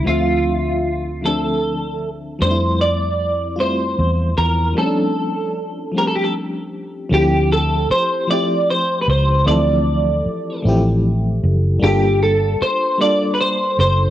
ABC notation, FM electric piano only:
X:1
M:6/8
L:1/8
Q:3/8=51
K:Dm
V:1 name="FM electric piano"
[D,F,A,Ce]2 z [D,F,A,CD]2 z | [F,G,A,CDE]2 z [G,A,CEF]2 z | [F,G,A,C^CD]2 z [F,G,A,=CG]2 z | [F,A,CEG]2 z [F,A,CEG]2 z |
[E,F,A,CEA]2 z [E,F,A,CEG]2 z | [G,B,DFA]2 z [G,B,DFA]2 z |]